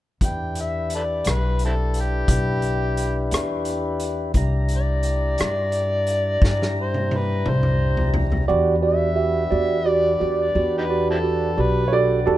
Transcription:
0.21 E2 D4 E4 G4 B4, kick, closed hi-hat
0.25 G5
0.55 closed hi-hat
0.61 E5
0.90 closed hi-hat
0.95 A4 B4 D5
1.25 B1, cross-stick, closed hi-hat
1.30 B4
1.59 closed hi-hat
1.65 C4 E4 A4
1.94 closed hi-hat
2.01 G4
2.28 B1, kick, closed hi-hat
2.62 closed hi-hat
2.97 closed hi-hat
3.31 E2, cross-stick, closed hi-hat
3.65 closed hi-hat
4.00 closed hi-hat
4.34 C2 D4 E4 G4 A#5, kick, closed hi-hat
4.69 closed hi-hat
4.75 D5
5.03 closed hi-hat
5.38 G2, cross-stick, closed hi-hat
5.72 closed hi-hat
6.07 closed hi-hat
6.42 G2, kick, snare
6.62 snare
6.81 C5
6.94 high tom
7.11 high tom
7.17 B4
7.46 C2 C5, mid tom
7.63 mid tom
7.97 floor tom
8.14 floor tom
8.32 floor tom
8.48 E2 D4 F#4 G4 B4 D5
8.82 F#4 G4 D5
8.88 E5
9.15 F#4 G4 E5
9.50 E2 F#4 G4 D5
9.85 F#4 G4 D5
10.20 E2 F#4 G4 D5
10.42 D5
10.55 E2 F#4 G4 D5
10.78 D#4 G4 B4
10.90 F#4 G4 D5
11.11 C4 E4 A4
11.23 F#4 G4 D5
11.57 B1 F#4 G4 D5
11.61 B4
11.88 C#5
11.92 F#4 G4 A4 D5
12.26 E2 F#4 G4 A4 D5

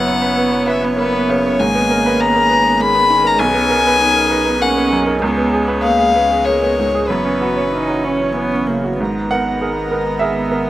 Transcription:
Already playing: F#1 F#2 B3 C#4 E4 C#5 F#5
0.07 C#5
0.22 B4
0.38 B3
0.51 C#5
0.68 B4 E5
0.82 B3 C#5
0.97 A#3 B3 B4
1.13 B3
1.29 C#3 C#5
1.46 C#5
1.59 G#1 G#2 A#3 D#4 G#4 G#5
1.75 B3
1.91 A#4
2.06 B4
2.20 B3 A#5
2.36 A#4
2.50 B4
2.64 B3
2.80 G#3 A#3 B5
2.94 B3
3.10 D#3
3.24 A#4 A#5
3.39 B1 B3 G#5
3.54 B3
3.70 A#4
3.87 B4
4.01 B3 D#4
4.16 A#4
4.31 B4
4.46 B3
4.61 A#3 C#4 F#5
4.76 B3
4.93 F#2
5.07 A#4
5.22 C#2 G#3 B3 C#4 C#5
5.37 B3
5.53 G#4
5.68 B4
5.83 A#3 B3 F5
5.99 G#4
6.14 G#3 B4
6.32 B3
6.45 A#3 C#5
6.62 B3
6.79 G#2
6.95 G#4
7.08 F#1 F#2 E3 B3 C#4 B4
7.25 C#4
7.42 F#4
7.57 C#5
7.71 C#4 D#4
7.90 F#4
8.04 C#4 C#5
8.21 C#4
8.36 B3
8.53 C#4
8.67 C#3 A#3
8.84 F#4
8.99 G#1 G#2 D#3 B3 A#4 A#5
9.31 B3 A#4 F#5
9.61 G#4 A#4
9.91 B3 A#4
10.19 G#4 A#4 E5
10.52 B3 A#4

